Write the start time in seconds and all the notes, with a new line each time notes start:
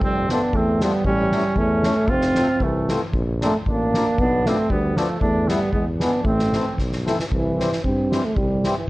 0.01 F1 G3 C4, kick
0.29 F3 A3 B3 C4 D4, snare
0.53 E2 A3 C4, kick
0.80 F3 G3 A3 B3 C4, snare
1.04 A1 G3 C#4, kick
1.32 E3 A3 C#4, snare
1.56 E2 A3 C#4, kick
1.83 E3 A3 C#4, snare
2.08 F1 C4 F4, kick
2.21 snare
2.35 F3 A3 C4, snare
2.60 C2 E3 A3, kick
2.89 F3 A3 C4, snare
3.13 A#1, kick
3.41 F3 A#3 C4 D4, snare
3.45 A3
3.66 A1 A#3 D4, kick
3.94 F3 A#3 D4, snare
4.18 B1 B3 D4, kick
4.46 F3 A3 B3 C4 D4, snare
4.70 D2 G3 B3, kick
4.97 F3 A3 B3 D4, snare
5.20 E2 A3 D4, kick
5.48 E3 G3 A3 B3, snare
5.72 E2 G#3 B3, kick
6.00 E3 G#3 B3 D4, snare
6.23 A1 A3 C4, kick
6.39 snare
6.53 E3 A3 C4, snare
6.78 B1, kick, snare
6.92 snare
7.06 E3 A3 C4, snare
7.19 E3, snare
7.31 C2 E3, kick
7.59 E3 G3 C4, snare
7.72 snare
7.84 G2 C4, kick
8.11 E3 G3 C4, snare
8.25 A3
8.36 C2 G3, kick
8.64 E3 G3 C4, snare
8.77 E3